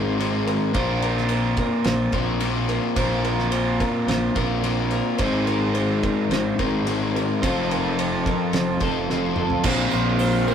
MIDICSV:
0, 0, Header, 1, 8, 480
1, 0, Start_track
1, 0, Tempo, 555556
1, 648, Time_signature, 4, 2, 24, 8
1, 9111, End_track
2, 0, Start_track
2, 0, Title_t, "Ambient pad"
2, 0, Program_c, 0, 92
2, 8346, Note_on_c, 0, 70, 76
2, 8347, Note_on_c, 0, 77, 72
2, 8348, Note_on_c, 0, 72, 69
2, 8352, Note_on_c, 0, 84, 85
2, 9111, Note_off_c, 0, 70, 0
2, 9111, Note_off_c, 0, 72, 0
2, 9111, Note_off_c, 0, 77, 0
2, 9111, Note_off_c, 0, 84, 0
2, 9111, End_track
3, 0, Start_track
3, 0, Title_t, "Clean electric guitar"
3, 0, Program_c, 1, 27
3, 0, Note_on_c, 1, 70, 75
3, 399, Note_off_c, 1, 70, 0
3, 409, Note_on_c, 1, 70, 73
3, 639, Note_off_c, 1, 70, 0
3, 642, Note_on_c, 1, 72, 85
3, 887, Note_off_c, 1, 72, 0
3, 890, Note_on_c, 1, 70, 77
3, 1130, Note_off_c, 1, 70, 0
3, 1134, Note_on_c, 1, 72, 70
3, 1365, Note_off_c, 1, 72, 0
3, 1369, Note_on_c, 1, 70, 72
3, 1603, Note_off_c, 1, 70, 0
3, 1606, Note_on_c, 1, 72, 82
3, 1843, Note_off_c, 1, 72, 0
3, 1846, Note_on_c, 1, 70, 69
3, 2316, Note_off_c, 1, 70, 0
3, 2327, Note_on_c, 1, 70, 74
3, 2563, Note_off_c, 1, 70, 0
3, 2566, Note_on_c, 1, 72, 87
3, 2801, Note_off_c, 1, 72, 0
3, 2804, Note_on_c, 1, 70, 78
3, 3032, Note_off_c, 1, 70, 0
3, 3035, Note_on_c, 1, 72, 78
3, 3280, Note_off_c, 1, 72, 0
3, 3284, Note_on_c, 1, 70, 74
3, 3520, Note_off_c, 1, 70, 0
3, 3524, Note_on_c, 1, 72, 84
3, 3763, Note_off_c, 1, 72, 0
3, 3767, Note_on_c, 1, 70, 74
3, 4244, Note_off_c, 1, 70, 0
3, 4255, Note_on_c, 1, 70, 77
3, 4476, Note_off_c, 1, 70, 0
3, 4480, Note_on_c, 1, 72, 87
3, 4722, Note_off_c, 1, 72, 0
3, 4726, Note_on_c, 1, 70, 77
3, 4957, Note_off_c, 1, 70, 0
3, 4960, Note_on_c, 1, 72, 75
3, 5206, Note_off_c, 1, 72, 0
3, 5209, Note_on_c, 1, 70, 74
3, 5450, Note_off_c, 1, 70, 0
3, 5453, Note_on_c, 1, 72, 84
3, 5693, Note_off_c, 1, 72, 0
3, 5697, Note_on_c, 1, 70, 77
3, 6172, Note_off_c, 1, 70, 0
3, 6183, Note_on_c, 1, 70, 69
3, 6409, Note_off_c, 1, 70, 0
3, 6412, Note_on_c, 1, 72, 89
3, 6653, Note_off_c, 1, 72, 0
3, 6666, Note_on_c, 1, 70, 77
3, 6900, Note_off_c, 1, 70, 0
3, 6904, Note_on_c, 1, 72, 78
3, 7139, Note_off_c, 1, 72, 0
3, 7145, Note_on_c, 1, 70, 72
3, 7379, Note_off_c, 1, 70, 0
3, 7382, Note_on_c, 1, 72, 79
3, 7618, Note_off_c, 1, 72, 0
3, 7626, Note_on_c, 1, 69, 79
3, 8091, Note_off_c, 1, 69, 0
3, 8101, Note_on_c, 1, 69, 76
3, 8337, Note_off_c, 1, 69, 0
3, 8345, Note_on_c, 1, 72, 90
3, 8573, Note_off_c, 1, 72, 0
3, 8576, Note_on_c, 1, 70, 82
3, 8809, Note_off_c, 1, 70, 0
3, 8812, Note_on_c, 1, 72, 83
3, 9051, Note_off_c, 1, 72, 0
3, 9055, Note_on_c, 1, 70, 79
3, 9111, Note_off_c, 1, 70, 0
3, 9111, End_track
4, 0, Start_track
4, 0, Title_t, "Overdriven electric guitar"
4, 0, Program_c, 2, 29
4, 0, Note_on_c, 2, 56, 65
4, 0, Note_on_c, 2, 60, 73
4, 0, Note_on_c, 2, 63, 71
4, 0, Note_on_c, 2, 68, 83
4, 0, Note_on_c, 2, 72, 90
4, 145, Note_off_c, 2, 56, 0
4, 151, Note_off_c, 2, 63, 0
4, 152, Note_off_c, 2, 68, 0
4, 155, Note_on_c, 2, 56, 74
4, 160, Note_off_c, 2, 60, 0
4, 162, Note_on_c, 2, 63, 84
4, 163, Note_on_c, 2, 60, 78
4, 170, Note_off_c, 2, 72, 0
4, 172, Note_on_c, 2, 68, 82
4, 173, Note_on_c, 2, 72, 78
4, 627, Note_off_c, 2, 56, 0
4, 628, Note_off_c, 2, 60, 0
4, 630, Note_off_c, 2, 63, 0
4, 632, Note_on_c, 2, 58, 79
4, 636, Note_off_c, 2, 68, 0
4, 636, Note_on_c, 2, 65, 80
4, 640, Note_on_c, 2, 70, 89
4, 650, Note_off_c, 2, 72, 0
4, 653, Note_on_c, 2, 72, 86
4, 1826, Note_off_c, 2, 58, 0
4, 1828, Note_off_c, 2, 65, 0
4, 1830, Note_off_c, 2, 70, 0
4, 1845, Note_off_c, 2, 72, 0
4, 1848, Note_on_c, 2, 72, 83
4, 1854, Note_on_c, 2, 70, 70
4, 1858, Note_on_c, 2, 65, 72
4, 1870, Note_on_c, 2, 58, 61
4, 2077, Note_off_c, 2, 58, 0
4, 2077, Note_off_c, 2, 70, 0
4, 2079, Note_off_c, 2, 65, 0
4, 2087, Note_on_c, 2, 58, 78
4, 2097, Note_on_c, 2, 65, 75
4, 2100, Note_on_c, 2, 70, 78
4, 2103, Note_off_c, 2, 72, 0
4, 2107, Note_on_c, 2, 72, 80
4, 2550, Note_off_c, 2, 58, 0
4, 2557, Note_off_c, 2, 65, 0
4, 2560, Note_off_c, 2, 70, 0
4, 2560, Note_on_c, 2, 58, 76
4, 2567, Note_on_c, 2, 65, 92
4, 2570, Note_off_c, 2, 72, 0
4, 2573, Note_on_c, 2, 70, 88
4, 2573, Note_on_c, 2, 72, 85
4, 3752, Note_off_c, 2, 58, 0
4, 3755, Note_off_c, 2, 65, 0
4, 3758, Note_off_c, 2, 70, 0
4, 3759, Note_off_c, 2, 72, 0
4, 3763, Note_on_c, 2, 72, 82
4, 3771, Note_on_c, 2, 70, 81
4, 3775, Note_on_c, 2, 65, 67
4, 3784, Note_on_c, 2, 58, 68
4, 3993, Note_off_c, 2, 58, 0
4, 3997, Note_off_c, 2, 70, 0
4, 3999, Note_off_c, 2, 65, 0
4, 4004, Note_on_c, 2, 58, 79
4, 4007, Note_on_c, 2, 65, 82
4, 4010, Note_on_c, 2, 70, 83
4, 4013, Note_off_c, 2, 72, 0
4, 4017, Note_on_c, 2, 72, 82
4, 4473, Note_off_c, 2, 58, 0
4, 4475, Note_off_c, 2, 65, 0
4, 4476, Note_off_c, 2, 70, 0
4, 4491, Note_on_c, 2, 56, 85
4, 4494, Note_on_c, 2, 60, 84
4, 4501, Note_on_c, 2, 63, 87
4, 4506, Note_on_c, 2, 68, 86
4, 4508, Note_off_c, 2, 72, 0
4, 4511, Note_on_c, 2, 72, 94
4, 5678, Note_off_c, 2, 56, 0
4, 5683, Note_off_c, 2, 63, 0
4, 5686, Note_off_c, 2, 68, 0
4, 5693, Note_off_c, 2, 72, 0
4, 5697, Note_on_c, 2, 72, 82
4, 5704, Note_on_c, 2, 68, 79
4, 5706, Note_on_c, 2, 63, 74
4, 5710, Note_off_c, 2, 60, 0
4, 5713, Note_on_c, 2, 60, 67
4, 5716, Note_on_c, 2, 56, 68
4, 5924, Note_off_c, 2, 68, 0
4, 5925, Note_off_c, 2, 63, 0
4, 5930, Note_off_c, 2, 56, 0
4, 5940, Note_off_c, 2, 60, 0
4, 5943, Note_on_c, 2, 60, 79
4, 5946, Note_on_c, 2, 56, 81
4, 5949, Note_on_c, 2, 63, 86
4, 5957, Note_off_c, 2, 72, 0
4, 5958, Note_on_c, 2, 68, 79
4, 5961, Note_on_c, 2, 72, 84
4, 6406, Note_off_c, 2, 56, 0
4, 6407, Note_off_c, 2, 63, 0
4, 6412, Note_off_c, 2, 68, 0
4, 6435, Note_on_c, 2, 53, 75
4, 6440, Note_off_c, 2, 60, 0
4, 6442, Note_off_c, 2, 72, 0
4, 6443, Note_on_c, 2, 60, 75
4, 6443, Note_on_c, 2, 69, 91
4, 6445, Note_on_c, 2, 65, 86
4, 6446, Note_on_c, 2, 72, 95
4, 7601, Note_off_c, 2, 72, 0
4, 7609, Note_off_c, 2, 69, 0
4, 7610, Note_off_c, 2, 53, 0
4, 7612, Note_off_c, 2, 65, 0
4, 7612, Note_on_c, 2, 72, 88
4, 7614, Note_off_c, 2, 60, 0
4, 7619, Note_on_c, 2, 69, 76
4, 7622, Note_on_c, 2, 65, 79
4, 7628, Note_on_c, 2, 53, 68
4, 7628, Note_on_c, 2, 60, 70
4, 7838, Note_off_c, 2, 72, 0
4, 7842, Note_off_c, 2, 69, 0
4, 7843, Note_off_c, 2, 65, 0
4, 7846, Note_off_c, 2, 53, 0
4, 7846, Note_off_c, 2, 60, 0
4, 7862, Note_on_c, 2, 53, 73
4, 7863, Note_on_c, 2, 60, 78
4, 7865, Note_on_c, 2, 65, 72
4, 7873, Note_on_c, 2, 69, 76
4, 7876, Note_on_c, 2, 72, 86
4, 8323, Note_off_c, 2, 53, 0
4, 8323, Note_off_c, 2, 60, 0
4, 8324, Note_off_c, 2, 65, 0
4, 8327, Note_on_c, 2, 58, 95
4, 8328, Note_off_c, 2, 69, 0
4, 8329, Note_off_c, 2, 72, 0
4, 8336, Note_on_c, 2, 60, 96
4, 8339, Note_on_c, 2, 65, 86
4, 8348, Note_on_c, 2, 70, 102
4, 9111, Note_off_c, 2, 58, 0
4, 9111, Note_off_c, 2, 60, 0
4, 9111, Note_off_c, 2, 65, 0
4, 9111, Note_off_c, 2, 70, 0
4, 9111, End_track
5, 0, Start_track
5, 0, Title_t, "Overdriven electric guitar"
5, 0, Program_c, 3, 29
5, 0, Note_on_c, 3, 44, 84
5, 0, Note_on_c, 3, 51, 81
5, 0, Note_on_c, 3, 56, 87
5, 0, Note_on_c, 3, 60, 94
5, 0, Note_on_c, 3, 63, 91
5, 0, Note_on_c, 3, 68, 92
5, 624, Note_off_c, 3, 44, 0
5, 628, Note_off_c, 3, 56, 0
5, 629, Note_off_c, 3, 51, 0
5, 635, Note_off_c, 3, 68, 0
5, 636, Note_off_c, 3, 63, 0
5, 649, Note_off_c, 3, 60, 0
5, 653, Note_on_c, 3, 60, 82
5, 2562, Note_off_c, 3, 60, 0
5, 2565, Note_on_c, 3, 60, 98
5, 4486, Note_on_c, 3, 44, 88
5, 4493, Note_on_c, 3, 51, 86
5, 4498, Note_off_c, 3, 60, 0
5, 6397, Note_off_c, 3, 44, 0
5, 6400, Note_off_c, 3, 51, 0
5, 8349, Note_on_c, 3, 72, 102
5, 9111, Note_off_c, 3, 72, 0
5, 9111, End_track
6, 0, Start_track
6, 0, Title_t, "Overdriven electric guitar"
6, 0, Program_c, 4, 29
6, 8326, Note_on_c, 4, 46, 84
6, 8341, Note_on_c, 4, 53, 98
6, 8352, Note_on_c, 4, 58, 103
6, 9043, Note_off_c, 4, 58, 0
6, 9047, Note_on_c, 4, 58, 85
6, 9054, Note_off_c, 4, 53, 0
6, 9058, Note_on_c, 4, 53, 77
6, 9071, Note_off_c, 4, 46, 0
6, 9074, Note_on_c, 4, 46, 70
6, 9111, Note_off_c, 4, 46, 0
6, 9111, Note_off_c, 4, 53, 0
6, 9111, Note_off_c, 4, 58, 0
6, 9111, End_track
7, 0, Start_track
7, 0, Title_t, "Fingered electric bass"
7, 0, Program_c, 5, 33
7, 0, Note_on_c, 5, 32, 80
7, 486, Note_off_c, 5, 32, 0
7, 642, Note_on_c, 5, 34, 85
7, 1383, Note_off_c, 5, 34, 0
7, 1602, Note_on_c, 5, 34, 89
7, 1789, Note_off_c, 5, 34, 0
7, 1840, Note_on_c, 5, 34, 79
7, 2398, Note_off_c, 5, 34, 0
7, 2561, Note_on_c, 5, 34, 86
7, 3304, Note_off_c, 5, 34, 0
7, 3515, Note_on_c, 5, 34, 88
7, 3706, Note_off_c, 5, 34, 0
7, 3768, Note_on_c, 5, 34, 81
7, 4324, Note_off_c, 5, 34, 0
7, 4485, Note_on_c, 5, 32, 83
7, 5228, Note_off_c, 5, 32, 0
7, 5437, Note_on_c, 5, 32, 92
7, 5628, Note_off_c, 5, 32, 0
7, 5695, Note_on_c, 5, 32, 80
7, 6249, Note_off_c, 5, 32, 0
7, 6418, Note_on_c, 5, 29, 87
7, 7155, Note_off_c, 5, 29, 0
7, 7371, Note_on_c, 5, 29, 91
7, 7557, Note_off_c, 5, 29, 0
7, 7611, Note_on_c, 5, 29, 77
7, 8165, Note_off_c, 5, 29, 0
7, 8329, Note_on_c, 5, 34, 105
7, 8515, Note_off_c, 5, 34, 0
7, 8584, Note_on_c, 5, 34, 109
7, 9111, Note_off_c, 5, 34, 0
7, 9111, End_track
8, 0, Start_track
8, 0, Title_t, "Drums"
8, 176, Note_on_c, 9, 51, 78
8, 262, Note_off_c, 9, 51, 0
8, 410, Note_on_c, 9, 51, 58
8, 496, Note_off_c, 9, 51, 0
8, 642, Note_on_c, 9, 51, 81
8, 647, Note_on_c, 9, 36, 103
8, 729, Note_off_c, 9, 51, 0
8, 733, Note_off_c, 9, 36, 0
8, 884, Note_on_c, 9, 51, 64
8, 971, Note_off_c, 9, 51, 0
8, 1013, Note_on_c, 9, 38, 30
8, 1100, Note_off_c, 9, 38, 0
8, 1112, Note_on_c, 9, 51, 76
8, 1198, Note_off_c, 9, 51, 0
8, 1354, Note_on_c, 9, 51, 57
8, 1360, Note_on_c, 9, 36, 82
8, 1440, Note_off_c, 9, 51, 0
8, 1446, Note_off_c, 9, 36, 0
8, 1593, Note_on_c, 9, 51, 78
8, 1603, Note_on_c, 9, 38, 102
8, 1679, Note_off_c, 9, 51, 0
8, 1689, Note_off_c, 9, 38, 0
8, 1834, Note_on_c, 9, 51, 58
8, 1841, Note_on_c, 9, 36, 83
8, 1921, Note_off_c, 9, 51, 0
8, 1927, Note_off_c, 9, 36, 0
8, 2077, Note_on_c, 9, 51, 85
8, 2164, Note_off_c, 9, 51, 0
8, 2322, Note_on_c, 9, 51, 64
8, 2408, Note_off_c, 9, 51, 0
8, 2560, Note_on_c, 9, 51, 95
8, 2562, Note_on_c, 9, 36, 110
8, 2646, Note_off_c, 9, 51, 0
8, 2648, Note_off_c, 9, 36, 0
8, 2804, Note_on_c, 9, 51, 68
8, 2890, Note_off_c, 9, 51, 0
8, 2929, Note_on_c, 9, 38, 30
8, 3015, Note_off_c, 9, 38, 0
8, 3039, Note_on_c, 9, 51, 82
8, 3125, Note_off_c, 9, 51, 0
8, 3286, Note_on_c, 9, 36, 78
8, 3289, Note_on_c, 9, 51, 63
8, 3373, Note_off_c, 9, 36, 0
8, 3376, Note_off_c, 9, 51, 0
8, 3527, Note_on_c, 9, 51, 80
8, 3538, Note_on_c, 9, 38, 97
8, 3614, Note_off_c, 9, 51, 0
8, 3624, Note_off_c, 9, 38, 0
8, 3765, Note_on_c, 9, 51, 64
8, 3767, Note_on_c, 9, 36, 80
8, 3851, Note_off_c, 9, 51, 0
8, 3853, Note_off_c, 9, 36, 0
8, 4006, Note_on_c, 9, 51, 80
8, 4092, Note_off_c, 9, 51, 0
8, 4240, Note_on_c, 9, 51, 63
8, 4326, Note_off_c, 9, 51, 0
8, 4479, Note_on_c, 9, 51, 87
8, 4487, Note_on_c, 9, 36, 114
8, 4565, Note_off_c, 9, 51, 0
8, 4574, Note_off_c, 9, 36, 0
8, 4726, Note_on_c, 9, 51, 61
8, 4813, Note_off_c, 9, 51, 0
8, 4965, Note_on_c, 9, 51, 77
8, 5051, Note_off_c, 9, 51, 0
8, 5212, Note_on_c, 9, 51, 58
8, 5214, Note_on_c, 9, 36, 80
8, 5298, Note_off_c, 9, 51, 0
8, 5300, Note_off_c, 9, 36, 0
8, 5451, Note_on_c, 9, 51, 77
8, 5461, Note_on_c, 9, 38, 99
8, 5537, Note_off_c, 9, 51, 0
8, 5548, Note_off_c, 9, 38, 0
8, 5693, Note_on_c, 9, 51, 60
8, 5696, Note_on_c, 9, 36, 77
8, 5779, Note_off_c, 9, 51, 0
8, 5783, Note_off_c, 9, 36, 0
8, 5934, Note_on_c, 9, 51, 81
8, 6020, Note_off_c, 9, 51, 0
8, 6189, Note_on_c, 9, 51, 61
8, 6275, Note_off_c, 9, 51, 0
8, 6420, Note_on_c, 9, 36, 104
8, 6426, Note_on_c, 9, 51, 90
8, 6507, Note_off_c, 9, 36, 0
8, 6512, Note_off_c, 9, 51, 0
8, 6663, Note_on_c, 9, 51, 72
8, 6750, Note_off_c, 9, 51, 0
8, 6901, Note_on_c, 9, 51, 89
8, 6987, Note_off_c, 9, 51, 0
8, 7138, Note_on_c, 9, 36, 80
8, 7146, Note_on_c, 9, 51, 61
8, 7224, Note_off_c, 9, 36, 0
8, 7233, Note_off_c, 9, 51, 0
8, 7371, Note_on_c, 9, 51, 85
8, 7381, Note_on_c, 9, 38, 94
8, 7457, Note_off_c, 9, 51, 0
8, 7468, Note_off_c, 9, 38, 0
8, 7606, Note_on_c, 9, 51, 65
8, 7612, Note_on_c, 9, 36, 82
8, 7692, Note_off_c, 9, 51, 0
8, 7698, Note_off_c, 9, 36, 0
8, 7860, Note_on_c, 9, 38, 54
8, 7947, Note_off_c, 9, 38, 0
8, 8086, Note_on_c, 9, 45, 79
8, 8172, Note_off_c, 9, 45, 0
8, 8209, Note_on_c, 9, 43, 72
8, 8295, Note_off_c, 9, 43, 0
8, 8326, Note_on_c, 9, 49, 119
8, 8331, Note_on_c, 9, 36, 109
8, 8412, Note_off_c, 9, 49, 0
8, 8417, Note_off_c, 9, 36, 0
8, 8563, Note_on_c, 9, 54, 78
8, 8649, Note_off_c, 9, 54, 0
8, 8804, Note_on_c, 9, 54, 92
8, 8810, Note_on_c, 9, 46, 52
8, 8891, Note_off_c, 9, 54, 0
8, 8896, Note_off_c, 9, 46, 0
8, 9053, Note_on_c, 9, 54, 68
8, 9111, Note_off_c, 9, 54, 0
8, 9111, End_track
0, 0, End_of_file